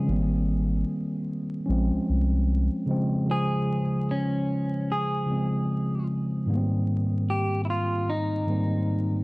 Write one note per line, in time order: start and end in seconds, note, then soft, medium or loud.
0.00 0.10 F3 medium
0.06 0.84 G#1 loud
0.06 1.57 D#3 medium
0.06 1.57 G3 medium
0.06 1.58 A#3 medium
0.11 1.59 C4 medium
1.66 1.91 A#1 loud
1.66 2.80 F3 medium
1.66 2.80 G#3 medium
1.66 2.79 C#4 medium
1.70 2.81 C4 medium
1.94 2.00 C2 soft
2.09 2.69 C2 medium
2.86 3.24 C#3 medium
2.86 3.25 F3 medium
2.86 3.26 G#3 medium
2.91 3.27 C4 medium
3.26 4.76 C#3 medium
3.26 4.77 F3 medium
3.26 4.78 G#3 medium
3.31 4.12 G#4 medium
3.31 4.79 C5 medium
4.11 4.92 C#4 medium
4.92 6.06 G#4 medium
5.26 6.39 C#3 medium
5.26 6.40 F3 medium
5.26 6.41 G#3 medium
5.31 6.41 C4 medium
6.46 7.96 G#2 medium
6.46 7.97 D#3 medium
6.46 7.98 G3 medium
6.46 7.98 A#3 medium
6.51 6.57 B3 medium
6.57 8.02 C4 medium
7.30 7.65 G4 medium
7.65 7.69 E4 soft
7.70 8.10 F4 medium
8.10 9.24 D#4 medium
8.46 9.24 G#2 medium
8.46 9.24 D#3 medium
8.46 9.24 G3 medium
8.46 9.24 A#3 medium
8.51 9.24 C4 medium